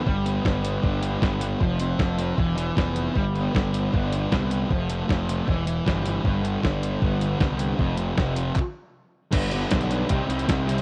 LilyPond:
<<
  \new Staff \with { instrumentName = "Clean electric guitar" } { \time 4/4 \key g \mixolydian \tempo 4 = 155 <g b d'>8 r4. <g b d'>8 r4. | <f c' f'>8 <f c' f'>8 r8 c'8 <e b e'>8 <e b>8 r4 | <g b d'>8 r4. <g b d'>8 <g b>8 r4 | <f a c'>8 <f a c'>8 <f a>8 r8 <e g b>8 g8 g8 r8 |
<g, d g>8 r4. <g, d g>8 r4. | <f, c f>8 <f, c f>8 r8 <f, c>8 r2 | \key g \major <g b e' b' d''>8 <g b e' b' d''>8 <g b e' b' d''>8 <g b e' b' d''>8 <c g c' ees' g' c''>8 <c g c' ees' g' c''>8 <c g c' ees' g' c''>8 <g c' ees' g' c''>8 | }
  \new Staff \with { instrumentName = "Distorted electric guitar" } { \clef bass \time 4/4 \key g \mixolydian g8 b8 g8 b8 d'8 g8 b8 g8 | f8 c'8 f8 c'8 e8 e8 b8 e8 | g8 b8 g8 b8 d'8 g8 b8 g8 | f8 a8 f8 a8 e8 e8 g8 e8 |
g,8 d8 d8 g8 b8 d8 g8 d8 | f,8 c8 c8 f8 r2 | \key g \major <g, d g b d'>8 <g, d g b d'>8 <g, d g b d'>8 <g, d g b d'>8 <c g c' ees'>8 <c g c' ees'>8 <c g c' ees'>8 <c g c' ees'>8 | }
  \new Staff \with { instrumentName = "Picked electric bass" } { \clef bass \time 4/4 \key g \mixolydian g,,4 g,,4 g,,4 g,,4 | f,,4 f,,4 e,,4 f,,4 | g,,4 g,,4 g,,4 c,4 | f,,4 f,,4 e,,4 g,,4 |
g,,4 g,,4 g,,4 c,4 | f,,4 f,,4 r2 | \key g \major g,,4 b,,4 c,16 r16 c,8 c,4 | }
  \new DrumStaff \with { instrumentName = "Drums" } \drummode { \time 4/4 bd8 hh8 <bd sn>8 hh8 bd8 hh8 <bd sn>8 hh8 | bd8 hh8 <bd sn>8 hh8 bd8 hh8 <bd sn>8 hh8 | bd8 hh8 <bd sn>8 hh8 bd8 hh8 <bd sn>8 hh8 | bd8 hh8 <bd sn>8 hh8 bd8 hh8 <bd sn>8 hh8 |
bd8 hh8 <bd sn>8 hh8 bd8 hh8 <bd sn>8 hh8 | bd8 hh8 <bd sn>8 hh8 <hc bd>4 r4 | <cymc hh bd>16 hh16 hh8 <hh bd sn>16 hh16 hh8 <hh bd>8 hh16 hh16 <hh bd sn>8 hh16 hh16 | }
>>